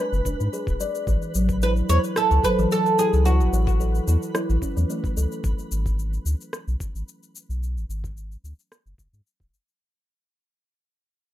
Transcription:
Already playing: D4 B4
0.00 B4
0.12 F#1, cabasa
0.25 F#1 D4, kick, cabasa
0.40 G#2, cabasa
0.53 G#4, cabasa
0.67 D1, kick, cabasa
0.80 D5, cabasa
0.95 cabasa
1.07 A1 E3, kick, cabasa
1.22 cabasa
1.35 A1 F#3, cabasa
1.49 kick, cabasa
1.62 E4 B4, cabasa
1.76 cabasa
1.89 E2 E4 C#5, cabasa
2.04 cabasa
2.16 E4 A4, cross-stick, cabasa
2.31 C#2, cabasa
2.44 F#3 B4, kick, cabasa
2.58 A1 E3, cabasa
2.71 A4, cabasa
2.86 cabasa
2.98 E4 G#4, cabasa
3.13 C#2, cabasa
3.25 E4 F#4, cabasa
3.40 A1, cabasa
3.53 A1 E3, cabasa
3.67 kick, cabasa
3.80 A4, cabasa
3.95 cabasa
4.07 E2 E4, cabasa
4.22 cabasa
4.35 E4, cross-stick, cabasa
4.50 A1, cabasa
4.62 C#4, kick, cabasa
4.77 E2 E3, cabasa
4.90 A3, cabasa
5.04 kick, cabasa
5.17 C#2 A4, cabasa
5.32 cabasa
5.44 G#1, kick, cabasa
5.59 cabasa
5.72 G#1, cabasa
5.86 kick, cabasa
5.99 cabasa
6.13 cabasa
6.25 D2, cabasa
6.41 cabasa
6.53 cross-stick, cabasa
6.68 B1, cabasa
6.80 kick, cabasa
6.95 G#1, cabasa
7.08 cabasa
7.23 cabasa
7.36 cabasa
7.49 B1, cabasa
7.63 cabasa
7.76 G#1, cabasa
7.89 G#1, cabasa
8.04 kick, cabasa
8.17 cabasa
8.32 cabasa
8.44 D2, cabasa
8.59 cabasa
8.72 cross-stick, cabasa
8.86 F#1, cabasa
8.98 F#1, kick, cabasa
9.13 G#2, cabasa
9.27 cabasa
9.40 D1, kick, cabasa
9.54 cabasa
9.69 cabasa

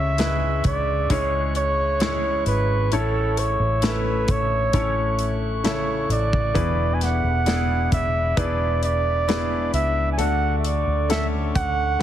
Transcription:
Already playing: C#2 C#3 G#3 C#4 E4 G#4 C#5 E5 C#6 E6
0.18 G#3 E4 G#4 B4, snare, closed hi-hat
0.64 C#2 D5, kick, closed hi-hat
1.09 C#2 G#3 C#4 E4 G#4 C#5 F#6, kick, closed hi-hat
1.55 C#5, closed hi-hat
2.00 G#3 C#4 E4 G#4 C#5, snare, closed hi-hat
2.46 G#1 B4, closed hi-hat
2.92 A1 A2 A3 C#4 E4 A4 C#5 E6, closed hi-hat
3.37 C#5, closed hi-hat
3.60 A1
3.82 A3 C#4 E4 A4 B4 E5, snare, closed hi-hat
4.28 A1 C#5, kick, closed hi-hat
4.73 A1 A3 C#4 E4 A4 C#5 F#6, kick, closed hi-hat
5.19 closed hi-hat
5.64 C#3 A3 E4 A4 C#5 E5, snare, closed hi-hat
6.09 A1 D5, closed hi-hat
6.33 kick
6.54 E1 E2 E3 B3 D4 E4 G#4 B4 E5 B5 D6, kick, closed hi-hat
6.94 G#5
7.01 F#5, snare, closed hi-hat
7.24 E1
7.46 G#3 B3 D4 E4 G#4 D5, snare, closed hi-hat
7.92 E1 E5, kick, closed hi-hat
8.37 E1 B3 D4 E4 G#4 B4 D5, kick, closed hi-hat
8.83 D5, closed hi-hat
9.28 G#3 B3 D4 E4 G#4 B4, snare, closed hi-hat
9.73 C#2 E5, closed hi-hat
10.12 G#5
10.18 D2 D3 A3 D4 F#4 A4 F#5 C#6, closed hi-hat
10.58 E5
10.64 D5, closed hi-hat
10.87 D2
11.09 A3 C#4 D4 F#4 A4 E5, snare, closed hi-hat
11.55 D2 F#5, kick, closed hi-hat
11.99 A3 C#4

